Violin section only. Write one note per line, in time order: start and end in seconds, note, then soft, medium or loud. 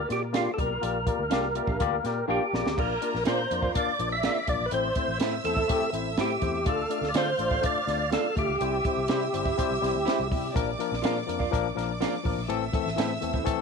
2.78 3.73 A#4 medium
2.78 3.73 A#5 medium
3.76 4.71 D5 medium
3.76 4.71 D6 medium
4.72 6.63 E5 medium
4.72 6.63 E6 medium
6.66 8.57 F5 medium
6.66 8.57 F6 medium
8.61 10.52 E5 medium
8.61 10.52 E6 medium
10.55 11.74 D5 medium
10.55 11.74 D6 medium
11.77 12.48 D5 medium
11.77 12.48 D6 medium
12.49 13.62 E5 medium
12.49 13.62 E6 medium